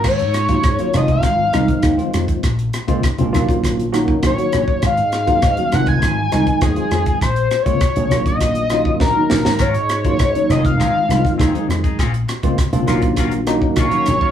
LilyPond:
<<
  \new Staff \with { instrumentName = "Analog synth lead" } { \time 4/4 \key aes \mixolydian \tempo 4 = 101 des''4. ees''16 f''4.~ f''16 r8 | r2. des''4 | f''4. ges''16 aes''4~ aes''16 aes'4 | \tuplet 3/2 { c''4 des''8~ } des''8. ees''4~ ees''16 bes'4 |
des''4. ees''16 f''4.~ f''16 r8 | r2. des''4 | }
  \new Staff \with { instrumentName = "Clean electric guitar" } { \time 4/4 \key aes \mixolydian r1 | r1 | r1 | r1 |
<ges des' f' bes'>16 r4 r16 <c' ees' aes'>16 r16 <c' ees' aes'>16 r8. <c' ees' aes'>16 <ees' aes'>16 r16 <ees' aes'>16 | <f c' des' aes'>16 r4 r16 <ges bes des' f'>16 r16 <ges bes des' f'>16 r8. <ges bes des' f'>16 <bes des' f'>16 r16 <bes des' f'>16 | }
  \new Staff \with { instrumentName = "Tine electric piano" } { \time 4/4 \key aes \mixolydian r8. <ees ges bes des' f'>16 <des' ges'>16 <ees ges bes des' f'>16 <ees f aes c' f'>8. r16 <ees f aes c' ees'>8. <ees f aes c' f'>8. | r8. <des aes bes c' f'>16 <c' ees'>16 <des aes bes c' f'>16 <ees ges bes des' f'>8. r16 <ees ges bes des' ges'>8. <ees ges bes des' ges'>8. | r8. <ees ges bes des' f'>16 <des' aes'>16 <ees ges bes des' ges'>16 <ees f aes c' f'>8. r16 <ees f aes c' ees'>8. <ees f aes c' f'>8. | r8. <des aes bes c' f'>16 <c' f'>16 <des aes bes c' aes'>16 <ees ges bes des' f'>8. r16 <ees ges bes des' f'>8. <ees ges bes des' ees'>8. |
r8. <ees ges bes des' f'>16 <des' ees'>16 <ees ges bes des' ees'>16 <ees f aes c' f'>8. r16 <ees f aes c' f'>8. <ees f aes c' aes'>8. | r8. <des aes bes c' f'>16 <c' aes'>16 <des aes bes c' f'>16 <ees ges bes des' f'>8. r16 <ees ges bes des' ees'>8. <ees ges bes des' ges'>8. | }
  \new Staff \with { instrumentName = "Slap bass" } { \clef bass \time 4/4 \key aes \mixolydian aes,,16 aes,8. aes,16 r16 f,,8 aes,,8 c,16 r16 ees,16 r16 f,16 r16 | bes,,8 r8. bes,,16 bes,,4. bes,,16 r16 bes,,16 r16 | aes,,16 aes,8. aes,16 r16 f,,8 aes,,8 c,16 r16 ees,16 r16 f,16 r16 | bes,,8 r8. bes,,16 bes,,4. bes,,16 r16 bes,,16 aes,,16 |
aes,,16 aes,8. aes,16 r16 f,,8 aes,,8 c,16 r16 ees,16 r16 f,16 r16 | bes,,8 r8. bes,,16 bes,,4. bes,,16 r16 bes,,16 r16 | }
  \new DrumStaff \with { instrumentName = "Drums" } \drummode { \time 4/4 <cymc bd ss>16 hh16 <hh ss>16 <hh bd>16 <hh bd ss>16 hh16 <hh ss>16 <hh bd>16 <hh bd ss>8 <hh ss>16 <hh bd>16 <hh bd ss>16 hh16 <hh ss>16 <hh bd>16 | <hh bd ss>16 hh16 <hh ss>16 <hh bd>16 <hh bd ss>16 hh16 <hh ss>16 <hh bd>16 <hh bd ss>16 hh16 <hh ss>16 bd16 <hh bd ss>16 hh16 <hh ss>16 bd16 | <hh bd ss>16 hh16 <hh ss>16 <hh bd>16 <hh bd ss>16 hh16 <hh ss>16 <hh bd>16 <hh bd ss>8 <hh ss>16 <hh bd>16 <hh bd ss>16 hh16 <hh ss>16 <hh bd>16 | <hh bd ss>16 hh16 <hh ss>16 <hh bd>16 <hh bd ss>16 hh16 <hh ss>16 <hh bd>16 <hh bd ss>16 hh16 <hh ss>16 bd16 <bd sn>8 sn16 sn16 |
<hh bd ss>16 hh16 <hh ss>16 <hh bd>16 <hh bd ss>16 hh16 <hh ss>16 <hh bd>16 <hh bd ss>8 <hh ss>16 <hh bd>16 <hh bd ss>16 hh16 <hh ss>16 <hh bd>16 | <hh bd ss>16 hh16 <hh ss>16 <hh bd>16 <hh bd ss>16 hh16 <hh ss>16 <hh bd>16 <hh bd ss>16 hh16 <hh ss>16 bd16 <hh bd ss>16 hh16 <hh ss>16 bd16 | }
>>